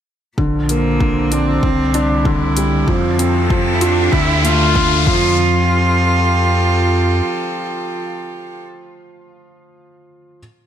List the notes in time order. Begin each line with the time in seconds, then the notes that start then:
0.37 A#1 A#2 D3, kick, riser
0.47 F3
0.59 C4
0.69 A#3, closed hi-hat
0.93 D4
1.00 D3, kick
1.32 C4 D4, closed hi-hat
1.62 C2 C3 D3, kick
1.81 G3
1.94 D4, closed hi-hat
2.18 E4
2.25 D3, kick
2.57 G3, closed hi-hat
2.87 F2 F3 C4, kick
3.13 C4 A4
3.19 C4, closed hi-hat
3.31 G4
3.50 F3, kick
3.74 E4
3.81 D4 F4, closed hi-hat
4.12 D2 D3 E4, kick
4.44 A3 F4, closed hi-hat
4.69 F4 E5
4.75 D3, kick
5.06 F2 F3 F4, kick
5.16 C4
5.56 G4
5.66 A4